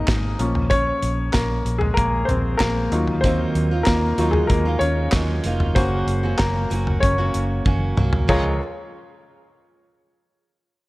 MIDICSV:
0, 0, Header, 1, 5, 480
1, 0, Start_track
1, 0, Key_signature, -5, "major"
1, 0, Tempo, 630915
1, 542, Time_signature, 4, 2, 24, 8
1, 8284, End_track
2, 0, Start_track
2, 0, Title_t, "Grand piano"
2, 0, Program_c, 0, 0
2, 0, Control_c, 0, 64, 127
2, 0, Note_on_c, 0, 56, 57
2, 0, Note_on_c, 0, 58, 60
2, 0, Note_on_c, 0, 60, 52
2, 0, Note_on_c, 0, 63, 69
2, 0, Note_on_c, 0, 68, 73
2, 0, Note_on_c, 0, 70, 81
2, 0, Note_on_c, 0, 72, 81
2, 0, Note_on_c, 0, 75, 90
2, 273, Note_off_c, 0, 75, 0
2, 275, Note_off_c, 0, 60, 0
2, 277, Note_off_c, 0, 63, 0
2, 298, Note_on_c, 0, 53, 54
2, 301, Note_off_c, 0, 58, 0
2, 301, Note_on_c, 0, 58, 50
2, 306, Note_on_c, 0, 61, 59
2, 312, Note_off_c, 0, 70, 0
2, 312, Control_c, 0, 64, 0
2, 314, Note_off_c, 0, 68, 0
2, 314, Note_off_c, 0, 72, 0
2, 315, Note_off_c, 0, 56, 0
2, 432, Control_c, 0, 64, 127
2, 531, Note_on_c, 0, 73, 103
2, 538, Note_off_c, 0, 61, 0
2, 550, Note_on_c, 0, 61, 77
2, 990, Note_off_c, 0, 53, 0
2, 991, Note_off_c, 0, 58, 0
2, 996, Note_off_c, 0, 61, 0
2, 1010, Note_on_c, 0, 70, 74
2, 1028, Note_on_c, 0, 58, 59
2, 1031, Note_off_c, 0, 73, 0
2, 1359, Note_on_c, 0, 68, 82
2, 1360, Note_off_c, 0, 58, 0
2, 1384, Note_on_c, 0, 56, 64
2, 1387, Note_off_c, 0, 70, 0
2, 1477, Note_on_c, 0, 70, 82
2, 1495, Note_off_c, 0, 56, 0
2, 1495, Note_off_c, 0, 68, 0
2, 1504, Note_on_c, 0, 58, 65
2, 1714, Note_on_c, 0, 72, 79
2, 1727, Note_off_c, 0, 58, 0
2, 1737, Note_off_c, 0, 70, 0
2, 1743, Note_on_c, 0, 60, 64
2, 1771, Note_off_c, 0, 72, 0
2, 1797, Note_off_c, 0, 60, 0
2, 1957, Note_on_c, 0, 70, 84
2, 1985, Note_on_c, 0, 58, 68
2, 2217, Note_on_c, 0, 54, 55
2, 2220, Note_on_c, 0, 63, 51
2, 2223, Note_on_c, 0, 65, 56
2, 2234, Control_c, 0, 64, 0
2, 2304, Note_off_c, 0, 70, 0
2, 2319, Note_off_c, 0, 58, 0
2, 2346, Control_c, 0, 64, 127
2, 2437, Note_on_c, 0, 72, 88
2, 2466, Note_on_c, 0, 60, 71
2, 2914, Note_on_c, 0, 70, 79
2, 2915, Note_off_c, 0, 60, 0
2, 2944, Note_on_c, 0, 58, 62
2, 2945, Note_off_c, 0, 72, 0
2, 3169, Note_off_c, 0, 54, 0
2, 3173, Note_off_c, 0, 63, 0
2, 3176, Note_off_c, 0, 65, 0
2, 3180, Note_on_c, 0, 54, 47
2, 3184, Note_on_c, 0, 63, 41
2, 3188, Note_on_c, 0, 65, 54
2, 3278, Note_on_c, 0, 68, 72
2, 3279, Note_off_c, 0, 58, 0
2, 3300, Note_off_c, 0, 70, 0
2, 3303, Note_on_c, 0, 56, 55
2, 3398, Note_off_c, 0, 54, 0
2, 3400, Note_off_c, 0, 63, 0
2, 3402, Note_off_c, 0, 65, 0
2, 3402, Note_on_c, 0, 70, 80
2, 3415, Note_off_c, 0, 56, 0
2, 3415, Note_off_c, 0, 68, 0
2, 3427, Note_on_c, 0, 58, 63
2, 3459, Note_off_c, 0, 70, 0
2, 3481, Note_off_c, 0, 58, 0
2, 3644, Note_on_c, 0, 73, 91
2, 3665, Note_on_c, 0, 61, 63
2, 4104, Note_off_c, 0, 73, 0
2, 4114, Note_off_c, 0, 61, 0
2, 4376, Note_on_c, 0, 72, 85
2, 4377, Note_on_c, 0, 58, 58
2, 4382, Note_on_c, 0, 61, 51
2, 4387, Note_on_c, 0, 66, 59
2, 4396, Control_c, 0, 64, 0
2, 4528, Control_c, 0, 64, 127
2, 4854, Note_on_c, 0, 70, 79
2, 4857, Note_off_c, 0, 58, 0
2, 4869, Note_on_c, 0, 58, 64
2, 4875, Note_off_c, 0, 72, 0
2, 5073, Note_off_c, 0, 61, 0
2, 5075, Note_off_c, 0, 66, 0
2, 5316, Note_off_c, 0, 58, 0
2, 5329, Note_on_c, 0, 73, 89
2, 5348, Note_on_c, 0, 61, 72
2, 5354, Note_off_c, 0, 70, 0
2, 6027, Note_off_c, 0, 73, 0
2, 6036, Note_off_c, 0, 61, 0
2, 6306, Note_on_c, 0, 37, 73
2, 6307, Note_on_c, 0, 73, 89
2, 6308, Note_on_c, 0, 65, 79
2, 6308, Note_on_c, 0, 70, 72
2, 6310, Note_on_c, 0, 68, 74
2, 6315, Control_c, 0, 64, 0
2, 6528, Note_off_c, 0, 37, 0
2, 6529, Note_off_c, 0, 73, 0
2, 6530, Note_off_c, 0, 65, 0
2, 6530, Note_off_c, 0, 70, 0
2, 6531, Note_off_c, 0, 68, 0
2, 8284, End_track
3, 0, Start_track
3, 0, Title_t, "Steel-string acoustic guitar"
3, 0, Program_c, 1, 25
3, 2462, Note_on_c, 1, 51, 72
3, 2467, Note_on_c, 1, 54, 83
3, 2471, Note_on_c, 1, 58, 79
3, 2474, Note_on_c, 1, 63, 83
3, 2477, Note_on_c, 1, 65, 89
3, 2812, Note_off_c, 1, 65, 0
3, 2821, Note_on_c, 1, 65, 52
3, 2823, Note_off_c, 1, 51, 0
3, 2824, Note_off_c, 1, 63, 0
3, 2825, Note_off_c, 1, 54, 0
3, 2827, Note_off_c, 1, 58, 0
3, 2833, Note_on_c, 1, 63, 51
3, 2840, Note_on_c, 1, 58, 45
3, 3179, Note_off_c, 1, 58, 0
3, 3179, Note_on_c, 1, 54, 58
3, 3183, Note_off_c, 1, 65, 0
3, 3186, Note_off_c, 1, 63, 0
3, 3188, Note_on_c, 1, 58, 69
3, 3195, Note_on_c, 1, 63, 75
3, 3199, Note_on_c, 1, 65, 66
3, 3530, Note_off_c, 1, 65, 0
3, 3539, Note_on_c, 1, 65, 56
3, 3541, Note_off_c, 1, 63, 0
3, 3542, Note_off_c, 1, 54, 0
3, 3546, Note_off_c, 1, 58, 0
3, 3550, Note_on_c, 1, 63, 52
3, 3560, Note_on_c, 1, 58, 52
3, 3896, Note_off_c, 1, 58, 0
3, 3898, Note_on_c, 1, 54, 59
3, 3902, Note_off_c, 1, 63, 0
3, 3902, Note_off_c, 1, 65, 0
3, 3905, Note_on_c, 1, 58, 69
3, 3911, Note_on_c, 1, 63, 58
3, 3919, Note_on_c, 1, 65, 60
3, 4134, Note_off_c, 1, 54, 0
3, 4143, Note_on_c, 1, 54, 61
3, 4145, Note_off_c, 1, 58, 0
3, 4148, Note_off_c, 1, 63, 0
3, 4151, Note_off_c, 1, 65, 0
3, 4152, Note_on_c, 1, 58, 67
3, 4158, Note_on_c, 1, 63, 61
3, 4164, Note_on_c, 1, 65, 73
3, 4382, Note_off_c, 1, 54, 0
3, 4385, Note_off_c, 1, 58, 0
3, 4385, Note_on_c, 1, 42, 77
3, 4387, Note_on_c, 1, 49, 81
3, 4391, Note_off_c, 1, 63, 0
3, 4391, Note_on_c, 1, 54, 81
3, 4394, Note_off_c, 1, 65, 0
3, 4394, Note_on_c, 1, 58, 75
3, 4396, Note_on_c, 1, 61, 90
3, 4398, Note_on_c, 1, 66, 89
3, 4733, Note_off_c, 1, 66, 0
3, 4742, Note_off_c, 1, 61, 0
3, 4742, Note_on_c, 1, 66, 53
3, 4745, Note_off_c, 1, 42, 0
3, 4746, Note_off_c, 1, 49, 0
3, 4747, Note_off_c, 1, 58, 0
3, 4748, Note_off_c, 1, 54, 0
3, 4751, Note_on_c, 1, 61, 52
3, 4756, Note_on_c, 1, 58, 44
3, 4761, Note_on_c, 1, 54, 50
3, 5090, Note_off_c, 1, 54, 0
3, 5097, Note_off_c, 1, 58, 0
3, 5099, Note_on_c, 1, 54, 61
3, 5103, Note_off_c, 1, 61, 0
3, 5103, Note_off_c, 1, 66, 0
3, 5106, Note_on_c, 1, 58, 66
3, 5112, Note_on_c, 1, 61, 66
3, 5119, Note_on_c, 1, 66, 71
3, 5453, Note_off_c, 1, 66, 0
3, 5461, Note_off_c, 1, 61, 0
3, 5462, Note_off_c, 1, 54, 0
3, 5462, Note_on_c, 1, 66, 65
3, 5465, Note_off_c, 1, 58, 0
3, 5470, Note_on_c, 1, 61, 58
3, 5478, Note_on_c, 1, 58, 56
3, 5481, Note_on_c, 1, 54, 53
3, 5810, Note_off_c, 1, 54, 0
3, 5818, Note_off_c, 1, 58, 0
3, 5819, Note_on_c, 1, 54, 58
3, 5823, Note_off_c, 1, 66, 0
3, 5825, Note_off_c, 1, 61, 0
3, 5827, Note_on_c, 1, 58, 59
3, 5834, Note_on_c, 1, 61, 68
3, 5838, Note_on_c, 1, 66, 65
3, 6055, Note_off_c, 1, 54, 0
3, 6059, Note_off_c, 1, 58, 0
3, 6064, Note_on_c, 1, 54, 64
3, 6068, Note_off_c, 1, 61, 0
3, 6068, Note_on_c, 1, 58, 65
3, 6071, Note_off_c, 1, 66, 0
3, 6077, Note_on_c, 1, 61, 75
3, 6081, Note_on_c, 1, 66, 69
3, 6297, Note_on_c, 1, 49, 71
3, 6298, Note_off_c, 1, 54, 0
3, 6301, Note_on_c, 1, 53, 73
3, 6305, Note_off_c, 1, 58, 0
3, 6308, Note_off_c, 1, 61, 0
3, 6308, Note_on_c, 1, 56, 80
3, 6311, Note_on_c, 1, 65, 80
3, 6312, Note_off_c, 1, 66, 0
3, 6315, Note_on_c, 1, 70, 82
3, 6493, Note_off_c, 1, 49, 0
3, 6495, Note_off_c, 1, 53, 0
3, 6498, Note_off_c, 1, 56, 0
3, 6500, Note_off_c, 1, 65, 0
3, 6502, Note_off_c, 1, 70, 0
3, 8284, End_track
4, 0, Start_track
4, 0, Title_t, "Fingered electric bass"
4, 0, Program_c, 2, 33
4, 62, Note_on_c, 2, 32, 88
4, 259, Note_off_c, 2, 32, 0
4, 297, Note_on_c, 2, 34, 85
4, 693, Note_off_c, 2, 34, 0
4, 780, Note_on_c, 2, 34, 86
4, 978, Note_off_c, 2, 34, 0
4, 1022, Note_on_c, 2, 34, 94
4, 1219, Note_off_c, 2, 34, 0
4, 1256, Note_on_c, 2, 34, 93
4, 1456, Note_off_c, 2, 34, 0
4, 1501, Note_on_c, 2, 34, 98
4, 1698, Note_off_c, 2, 34, 0
4, 1737, Note_on_c, 2, 34, 94
4, 1936, Note_off_c, 2, 34, 0
4, 1979, Note_on_c, 2, 34, 84
4, 2178, Note_off_c, 2, 34, 0
4, 2216, Note_on_c, 2, 39, 98
4, 2613, Note_off_c, 2, 39, 0
4, 2698, Note_on_c, 2, 39, 91
4, 2897, Note_off_c, 2, 39, 0
4, 2943, Note_on_c, 2, 39, 89
4, 3140, Note_off_c, 2, 39, 0
4, 3178, Note_on_c, 2, 39, 82
4, 3377, Note_off_c, 2, 39, 0
4, 3419, Note_on_c, 2, 39, 94
4, 3618, Note_off_c, 2, 39, 0
4, 3656, Note_on_c, 2, 39, 94
4, 3856, Note_off_c, 2, 39, 0
4, 3901, Note_on_c, 2, 39, 96
4, 4099, Note_off_c, 2, 39, 0
4, 4142, Note_on_c, 2, 29, 86
4, 4340, Note_off_c, 2, 29, 0
4, 4384, Note_on_c, 2, 30, 87
4, 4581, Note_off_c, 2, 30, 0
4, 4618, Note_on_c, 2, 30, 97
4, 4817, Note_off_c, 2, 30, 0
4, 4868, Note_on_c, 2, 30, 105
4, 5063, Note_off_c, 2, 30, 0
4, 5103, Note_on_c, 2, 30, 95
4, 5300, Note_off_c, 2, 30, 0
4, 5346, Note_on_c, 2, 30, 108
4, 5542, Note_off_c, 2, 30, 0
4, 5589, Note_on_c, 2, 30, 90
4, 5784, Note_off_c, 2, 30, 0
4, 5827, Note_on_c, 2, 30, 92
4, 6023, Note_off_c, 2, 30, 0
4, 6068, Note_on_c, 2, 36, 92
4, 6263, Note_off_c, 2, 36, 0
4, 6306, Note_on_c, 2, 37, 82
4, 6529, Note_off_c, 2, 37, 0
4, 8284, End_track
5, 0, Start_track
5, 0, Title_t, "Drums"
5, 60, Note_on_c, 9, 39, 81
5, 62, Note_on_c, 9, 36, 98
5, 64, Note_on_c, 9, 38, 101
5, 64, Note_on_c, 9, 42, 90
5, 136, Note_off_c, 9, 39, 0
5, 138, Note_off_c, 9, 36, 0
5, 140, Note_off_c, 9, 38, 0
5, 140, Note_off_c, 9, 42, 0
5, 299, Note_on_c, 9, 42, 71
5, 375, Note_off_c, 9, 42, 0
5, 420, Note_on_c, 9, 43, 60
5, 496, Note_off_c, 9, 43, 0
5, 537, Note_on_c, 9, 42, 84
5, 539, Note_on_c, 9, 36, 97
5, 613, Note_off_c, 9, 42, 0
5, 615, Note_off_c, 9, 36, 0
5, 779, Note_on_c, 9, 42, 66
5, 855, Note_off_c, 9, 42, 0
5, 1014, Note_on_c, 9, 39, 73
5, 1018, Note_on_c, 9, 38, 84
5, 1020, Note_on_c, 9, 42, 89
5, 1023, Note_on_c, 9, 36, 95
5, 1090, Note_off_c, 9, 39, 0
5, 1094, Note_off_c, 9, 38, 0
5, 1096, Note_off_c, 9, 42, 0
5, 1099, Note_off_c, 9, 36, 0
5, 1263, Note_on_c, 9, 42, 59
5, 1339, Note_off_c, 9, 42, 0
5, 1378, Note_on_c, 9, 43, 59
5, 1454, Note_off_c, 9, 43, 0
5, 1503, Note_on_c, 9, 36, 104
5, 1505, Note_on_c, 9, 42, 82
5, 1579, Note_off_c, 9, 36, 0
5, 1581, Note_off_c, 9, 42, 0
5, 1741, Note_on_c, 9, 42, 61
5, 1742, Note_on_c, 9, 43, 64
5, 1817, Note_off_c, 9, 42, 0
5, 1818, Note_off_c, 9, 43, 0
5, 1976, Note_on_c, 9, 39, 88
5, 1980, Note_on_c, 9, 38, 109
5, 1980, Note_on_c, 9, 42, 85
5, 1981, Note_on_c, 9, 36, 90
5, 2052, Note_off_c, 9, 39, 0
5, 2056, Note_off_c, 9, 38, 0
5, 2056, Note_off_c, 9, 42, 0
5, 2057, Note_off_c, 9, 36, 0
5, 2218, Note_on_c, 9, 42, 70
5, 2294, Note_off_c, 9, 42, 0
5, 2336, Note_on_c, 9, 43, 58
5, 2412, Note_off_c, 9, 43, 0
5, 2460, Note_on_c, 9, 42, 90
5, 2461, Note_on_c, 9, 36, 104
5, 2536, Note_off_c, 9, 42, 0
5, 2537, Note_off_c, 9, 36, 0
5, 2701, Note_on_c, 9, 42, 64
5, 2777, Note_off_c, 9, 42, 0
5, 2936, Note_on_c, 9, 39, 68
5, 2940, Note_on_c, 9, 38, 96
5, 2942, Note_on_c, 9, 42, 85
5, 2944, Note_on_c, 9, 36, 99
5, 3013, Note_off_c, 9, 39, 0
5, 3016, Note_off_c, 9, 38, 0
5, 3018, Note_off_c, 9, 42, 0
5, 3020, Note_off_c, 9, 36, 0
5, 3180, Note_on_c, 9, 42, 67
5, 3256, Note_off_c, 9, 42, 0
5, 3295, Note_on_c, 9, 43, 59
5, 3372, Note_off_c, 9, 43, 0
5, 3420, Note_on_c, 9, 42, 83
5, 3422, Note_on_c, 9, 36, 106
5, 3496, Note_off_c, 9, 42, 0
5, 3498, Note_off_c, 9, 36, 0
5, 3658, Note_on_c, 9, 42, 57
5, 3734, Note_off_c, 9, 42, 0
5, 3895, Note_on_c, 9, 39, 92
5, 3899, Note_on_c, 9, 38, 104
5, 3899, Note_on_c, 9, 42, 86
5, 3902, Note_on_c, 9, 36, 100
5, 3971, Note_off_c, 9, 39, 0
5, 3975, Note_off_c, 9, 38, 0
5, 3975, Note_off_c, 9, 42, 0
5, 3978, Note_off_c, 9, 36, 0
5, 4137, Note_on_c, 9, 42, 71
5, 4213, Note_off_c, 9, 42, 0
5, 4262, Note_on_c, 9, 43, 64
5, 4338, Note_off_c, 9, 43, 0
5, 4383, Note_on_c, 9, 36, 110
5, 4383, Note_on_c, 9, 42, 91
5, 4459, Note_off_c, 9, 36, 0
5, 4459, Note_off_c, 9, 42, 0
5, 4625, Note_on_c, 9, 42, 72
5, 4701, Note_off_c, 9, 42, 0
5, 4861, Note_on_c, 9, 39, 75
5, 4865, Note_on_c, 9, 38, 96
5, 4867, Note_on_c, 9, 42, 95
5, 4868, Note_on_c, 9, 36, 98
5, 4937, Note_off_c, 9, 39, 0
5, 4941, Note_off_c, 9, 38, 0
5, 4943, Note_off_c, 9, 42, 0
5, 4944, Note_off_c, 9, 36, 0
5, 5107, Note_on_c, 9, 42, 67
5, 5183, Note_off_c, 9, 42, 0
5, 5228, Note_on_c, 9, 43, 60
5, 5304, Note_off_c, 9, 43, 0
5, 5348, Note_on_c, 9, 36, 109
5, 5350, Note_on_c, 9, 42, 89
5, 5424, Note_off_c, 9, 36, 0
5, 5426, Note_off_c, 9, 42, 0
5, 5585, Note_on_c, 9, 42, 61
5, 5661, Note_off_c, 9, 42, 0
5, 5827, Note_on_c, 9, 36, 101
5, 5827, Note_on_c, 9, 48, 53
5, 5903, Note_off_c, 9, 36, 0
5, 5904, Note_off_c, 9, 48, 0
5, 6068, Note_on_c, 9, 45, 88
5, 6144, Note_off_c, 9, 45, 0
5, 6184, Note_on_c, 9, 43, 90
5, 6260, Note_off_c, 9, 43, 0
5, 6305, Note_on_c, 9, 49, 83
5, 6307, Note_on_c, 9, 36, 108
5, 6382, Note_off_c, 9, 49, 0
5, 6383, Note_off_c, 9, 36, 0
5, 8284, End_track
0, 0, End_of_file